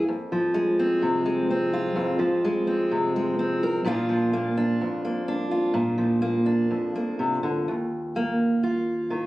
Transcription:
0.08 F2
0.32 F3
0.54 G#3
0.79 C4
1.02 C3
1.26 G#3
1.51 C4
1.73 F4
1.96 F2
2.19 F3
2.45 G#3
2.67 C4
2.91 C3
3.16 G#3
3.39 C4
3.63 A#4
3.85 A#2 F3 A#3 D4 F4
4.09 F3
4.33 A#3
4.57 D4
4.81 F2
5.05 A#3
5.28 D4
5.51 F4
5.74 A#2
5.98 F3
6.22 A#3
6.46 D4
6.71 F2
6.95 A#3
7.19 C3
7.43 D3
7.68 D#2
8.16 A#3
8.63 F4
9.10 D#3

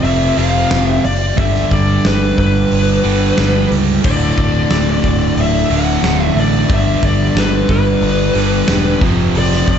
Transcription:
Already playing: F2 C3 F3 C4 G4
0.03 F1 F2 C3 F3 E5, open hi-hat
0.36 F1 F2 C3 F3 F5, open hi-hat
0.71 F1, snare, open hi-hat
0.86 E5
1.04 F#1 D5, open hi-hat
1.36 G1 G2 D3 G3 D4 A4 E5, kick, open hi-hat
1.55 snare
1.71 G1 D5, kick, open hi-hat
2.05 G1 B4, snare, open hi-hat
2.38 G1 B4, kick, open hi-hat
2.72 G1, open hi-hat
3.03 G1 G2 D3 G3, open hi-hat
3.37 G1 G2 D3 G3, snare, open hi-hat
3.71 C#2, open hi-hat
4.03 D1 D2 A2 D3 D4 D5 E5, kick, crash
4.38 D1 D5, kick, open hi-hat
4.71 D1, snare, open hi-hat
5.04 D1, kick, open hi-hat
5.37 D1, open hi-hat
5.41 E5
5.70 D1 D2 A2 D3 F#5, open hi-hat
6.02 D1 D2 A2 D3, snare, open hi-hat
6.24 E5
6.36 A1 D5, open hi-hat
6.67 G1 G2 D3 G3 A4, kick, open hi-hat
6.74 E5
7.03 G1 D5, kick, open hi-hat
7.35 G1 B4, snare, open hi-hat
7.69 G1 B4, kick, open hi-hat
8.02 G1, open hi-hat
8.34 G1 D3 G3, open hi-hat
8.39 G2
8.68 E1 G2 D3 G3, snare, open hi-hat
8.99 F1 F2 C3 F3 C4 G4, kick, open hi-hat
9.35 F1 D5, open hi-hat
9.52 snare
9.68 F1 D5, kick, open hi-hat

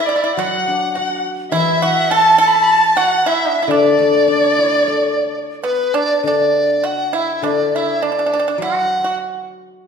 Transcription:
Already playing: D3
0.00 E4
0.06 E4 D5
0.16 E4
0.24 E4
0.36 F#3 F#4 F#5
0.68 D4
0.95 F#4 F#5
1.51 E3 E4 E5
1.82 F#4 F#5
2.10 A4 A5
2.38 A4 A5
2.47 B5
2.56 A5
2.63 B5
2.71 A5
2.97 F#4 F#5
3.26 E4 E5
3.48 D4
3.62 E4
3.67 D3 D4 D5
3.99 A3
4.28 D4
4.58 E4
4.88 A4
5.63 B3 B4
5.94 D4 D5
6.23 D3 D5
6.27 D4
6.84 F#4 F#5
7.13 E4 E5
7.42 D3 D4
7.46 D5
7.75 E4 E5
8.02 D4 D5
8.12 D4
8.19 D4
8.26 D4
8.33 D4
8.39 D4
8.48 D4
8.58 F#3 F#5
8.62 F#4
9.04 F#4

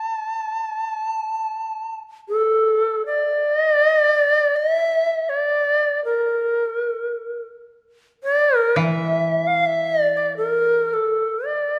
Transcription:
Already playing: A5
2.29 A4
3.06 D5
3.58 D#5
3.72 D5
3.88 D#5
4.02 D5
4.56 E5
5.29 D5
6.05 A#4
8.24 D5
8.58 A#4
8.76 E3 E5 F5
9.47 F5
9.66 E5
10.01 D5
10.17 D5
10.37 A#4
10.93 A4
11.45 D5

